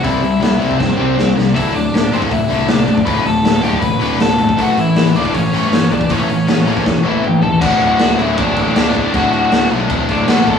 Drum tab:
CC |----------------|----------------|----------------|----------------|
HH |o-o-o-o---------|o-o-o-o-o-o-o-o-|o-o-o-o-o-o-o-o-|o-o-o-o-o-o-o-o-|
SD |----o---o---o-o-|----o-------o---|----o-------o---|----o-------o---|
T1 |----------------|----------------|----------------|----------------|
T2 |----------------|----------------|----------------|----------------|
FT |----------------|----------------|----------------|----------------|
BD |o------oo-------|o------oo------o|o------oo------o|o------oo------o|

CC |----------------|x-x-x-x-x-x-x-x-|x-x-x-x-x-x-x-x-|
HH |o-o-o-o---------|----------------|----------------|
SD |----o---o-------|----o-------o---|----o-------o---|
T1 |----------o-----|----------------|----------------|
T2 |------------o---|----------------|----------------|
FT |--------------o-|----------------|----------------|
BD |o------oo-------|o-------o-o---o-|o-------o-o---o-|